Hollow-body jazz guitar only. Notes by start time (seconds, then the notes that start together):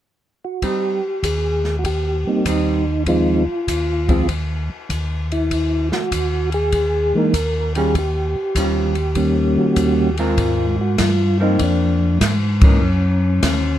0.62 G3 C4 D#4
2.46 G3 C4 D#4
4.09 F3 G#3 C4
7.76 D#3 G3 C#4 F4
8.57 D#3 G3 C#4 F4
10.19 G#3 C4 F4 A#4
11.40 F3 A#3 C4
12.64 E3 A#3 D#4